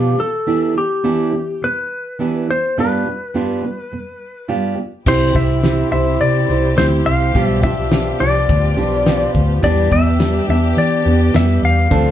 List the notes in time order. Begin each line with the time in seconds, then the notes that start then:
Already playing: B2 F3 B3 D4 F4 G4
0.17 B2 F3 B3 A4
0.47 E3 B3 D4 E4 G4
0.75 E3 B3 G4
1.04 E3 B3 D4 E4 G4
1.33 E3 B3
1.62 E3 B3 B4
2.19 E3 B3 D4 E4 G4
2.49 E3 B3 C5
2.77 G2 G3 B3 D4 F4 G4 B4
3.06 G2 G3 B3
3.34 G2 G3 B3 D4 F4 G4
3.63 G2 G3 B3
3.92 G2 G3 B3
4.48 G2 G3 B3 D4 F4 G4
4.77 G2 G3 B3
5.06 C2 C3 C4 E4 G4 C5, kick, crash
5.33 C2 E4 G4 C5 E5, kick, shaker
5.63 C4 E4 G4 C5, snare, shaker
5.91 C2 E4 G4 C5 E5, shaker
6.08 shaker
6.21 C3 D5, shaker
6.48 C2 E4 G4 C5, shaker
6.77 D2 C4 E4 G4 C5, snare, shaker
7.06 C2 F5, shaker
7.22 shaker
7.34 B1 B2 F3 G3 B3 D4 F4 G4, kick, shaker
7.45 E5
7.63 B1 F3 D4 F4 G4 E5, kick, shaker
7.91 F3 D4 F4 G4, snare, shaker
8.20 C2 F3 D4 F4 G4 D5, shaker
8.49 D2, kick, shaker
8.77 B1 F3 D4 F4 G4, shaker
8.93 shaker
9.06 F3 D4 F4 G4, snare, shaker
9.35 D2, kick, shaker
9.63 E2 E3 G3 B3 D4 G4 D5, kick, shaker
9.92 E2 B3 D4 G4 E5, kick, shaker
10.07 shaker
10.20 G3 B3 D4 G4, snare, shaker
10.48 E2 B3 D4 G4 E5, shaker
10.77 E3 D5, shaker
11.05 E2 B3 D4 G4, shaker
11.34 F2 G3 B3 D4 G4 E5, snare, shaker
11.62 E2 F5, shaker
11.90 D2 D3 F3 A3 C4 D4 F4 A4, kick, shaker